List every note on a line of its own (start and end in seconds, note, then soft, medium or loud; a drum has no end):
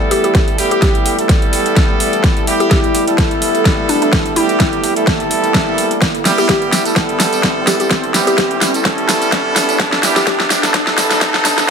0.00 0.56 G3 loud
0.00 0.56 B3 medium
0.00 0.56 E4 medium
0.00 11.70 E4 medium
0.00 0.56 A4 loud
0.00 11.70 A4 medium
0.00 11.70 D5 medium
0.00 11.70 G5 medium
0.00 riser medium
0.11 0.19 G4 medium
0.11 open hi-hat loud
0.24 0.31 G4 medium
0.24 closed hi-hat medium
0.35 kick loud
0.35 snare medium
0.35 closed hi-hat medium
0.48 closed hi-hat soft
0.58 1.15 G3 loud
0.58 1.15 B3 medium
0.58 1.15 E4 medium
0.58 1.15 G4 loud
0.58 open hi-hat loud
0.71 0.78 G4 medium
0.71 closed hi-hat medium
0.82 0.90 G4 medium
0.82 kick loud
0.82 snare medium
0.82 closed hi-hat medium
0.95 closed hi-hat soft
1.06 open hi-hat loud
1.18 2.45 G3 medium
1.18 2.45 B3 medium
1.18 2.45 E4 medium
1.18 2.45 A4 loud
1.18 closed hi-hat medium
1.29 kick loud
1.29 snare medium
1.29 closed hi-hat medium
1.42 closed hi-hat soft
1.53 open hi-hat loud
1.66 closed hi-hat medium
1.76 kick loud
1.76 snare medium
1.76 closed hi-hat medium
2.00 open hi-hat loud
2.13 closed hi-hat medium
2.24 kick loud
2.24 snare medium
2.24 closed hi-hat medium
2.37 closed hi-hat soft
2.47 3.04 G3 loud
2.47 3.04 B3 medium
2.47 3.04 E4 medium
2.47 3.04 G4 loud
2.47 open hi-hat loud
2.60 2.67 G4 medium
2.60 closed hi-hat soft
2.71 2.79 G4 medium
2.71 kick loud
2.71 snare medium
2.71 closed hi-hat medium
2.84 closed hi-hat soft
2.95 open hi-hat loud
3.07 4.34 G3 loud
3.07 4.34 B3 medium
3.07 4.34 E4 medium
3.07 4.34 A4 loud
3.07 closed hi-hat medium
3.18 kick loud
3.18 snare medium
3.18 closed hi-hat medium
3.31 closed hi-hat soft
3.42 open hi-hat loud
3.55 closed hi-hat soft
3.65 kick loud
3.65 snare medium
3.65 closed hi-hat medium
3.89 3.97 D4 medium
3.89 open hi-hat loud
4.02 4.09 D4 medium
4.02 closed hi-hat soft
4.13 kick loud
4.13 snare medium
4.13 closed hi-hat medium
4.26 closed hi-hat soft
4.36 4.93 G3 loud
4.36 4.93 B3 medium
4.36 4.93 E4 medium
4.36 4.84 E4 medium
4.36 4.93 G4 loud
4.36 open hi-hat loud
4.49 closed hi-hat soft
4.60 kick loud
4.60 snare medium
4.60 closed hi-hat medium
4.73 closed hi-hat soft
4.84 open hi-hat loud
4.96 6.08 G3 loud
4.96 6.08 B3 medium
4.96 6.08 E4 medium
4.96 6.08 A4 loud
4.96 closed hi-hat medium
5.07 kick loud
5.07 snare medium
5.07 closed hi-hat medium
5.20 closed hi-hat soft
5.31 open hi-hat loud
5.44 closed hi-hat soft
5.54 kick loud
5.54 snare medium
5.54 closed hi-hat medium
5.78 open hi-hat loud
5.91 closed hi-hat medium
6.02 kick loud
6.02 snare medium
6.02 closed hi-hat medium
6.02 tambourine soft
6.15 closed hi-hat soft
6.25 6.82 G3 loud
6.25 6.82 B3 medium
6.25 6.82 E4 medium
6.25 6.82 G4 loud
6.25 snare medium
6.25 open hi-hat loud
6.25 tambourine medium
6.38 6.45 G4 medium
6.38 closed hi-hat medium
6.38 tambourine soft
6.49 6.57 G4 medium
6.49 kick loud
6.49 snare medium
6.49 closed hi-hat medium
6.49 tambourine soft
6.62 closed hi-hat soft
6.73 snare medium
6.73 open hi-hat loud
6.73 tambourine medium
6.85 8.12 G3 medium
6.85 8.12 B3 medium
6.85 8.12 E4 medium
6.85 8.12 A4 loud
6.85 closed hi-hat medium
6.85 tambourine soft
6.96 kick loud
6.96 snare medium
6.96 closed hi-hat medium
6.96 tambourine soft
7.09 closed hi-hat soft
7.20 snare medium
7.20 open hi-hat loud
7.20 tambourine medium
7.33 closed hi-hat medium
7.33 tambourine soft
7.43 kick loud
7.43 snare medium
7.43 closed hi-hat medium
7.43 tambourine soft
7.67 7.75 G4 medium
7.67 snare medium
7.67 open hi-hat loud
7.67 tambourine medium
7.80 7.87 G4 medium
7.80 closed hi-hat medium
7.80 tambourine soft
7.91 kick loud
7.91 snare medium
7.91 closed hi-hat medium
7.91 tambourine soft
8.04 closed hi-hat soft
8.14 8.71 G3 loud
8.14 8.71 B3 medium
8.14 8.71 E4 loud
8.14 8.71 G4 loud
8.14 snare medium
8.14 open hi-hat loud
8.14 tambourine medium
8.27 8.34 G4 medium
8.27 closed hi-hat medium
8.27 tambourine soft
8.38 8.46 G4 medium
8.38 kick loud
8.38 snare medium
8.38 closed hi-hat medium
8.38 tambourine soft
8.51 closed hi-hat soft
8.61 snare medium
8.61 open hi-hat loud
8.61 tambourine medium
8.74 10.01 G3 loud
8.74 10.01 B3 medium
8.74 10.01 E4 medium
8.74 10.01 A4 loud
8.74 closed hi-hat medium
8.74 tambourine soft
8.85 kick loud
8.85 snare medium
8.85 closed hi-hat medium
8.85 tambourine soft
8.98 closed hi-hat soft
9.09 snare medium
9.09 open hi-hat loud
9.09 tambourine medium
9.22 closed hi-hat medium
9.22 tambourine soft
9.32 kick loud
9.32 snare medium
9.32 closed hi-hat medium
9.32 tambourine soft
9.56 snare medium
9.56 open hi-hat loud
9.56 tambourine medium
9.69 closed hi-hat medium
9.69 tambourine soft
9.80 kick loud
9.80 snare loud
9.80 closed hi-hat medium
9.80 tambourine soft
9.92 snare medium
9.92 closed hi-hat soft
10.03 10.60 G3 loud
10.03 10.60 B3 loud
10.03 10.60 E4 loud
10.03 10.60 G4 loud
10.03 snare medium
10.03 open hi-hat loud
10.03 tambourine medium
10.16 10.23 G4 medium
10.16 snare medium
10.16 closed hi-hat medium
10.16 tambourine soft
10.27 10.35 G4 medium
10.27 kick loud
10.27 snare medium
10.27 closed hi-hat medium
10.27 tambourine soft
10.40 snare medium
10.40 closed hi-hat soft
10.50 snare medium
10.50 open hi-hat loud
10.50 tambourine medium
10.63 11.70 G3 loud
10.63 11.70 B3 medium
10.63 11.70 E4 medium
10.63 11.70 A4 loud
10.63 snare medium
10.63 closed hi-hat medium
10.63 tambourine soft
10.74 kick loud
10.74 snare loud
10.74 closed hi-hat medium
10.74 tambourine soft
10.87 snare medium
10.87 closed hi-hat soft
10.98 snare loud
10.98 open hi-hat loud
10.98 tambourine medium
11.11 snare medium
11.11 closed hi-hat medium
11.11 tambourine soft
11.21 kick loud
11.21 snare loud
11.21 closed hi-hat medium
11.21 tambourine soft
11.34 snare medium
11.45 11.53 D4 medium
11.45 snare loud
11.45 open hi-hat loud
11.45 tambourine medium
11.58 11.65 D4 medium
11.58 snare medium
11.58 closed hi-hat medium
11.58 tambourine soft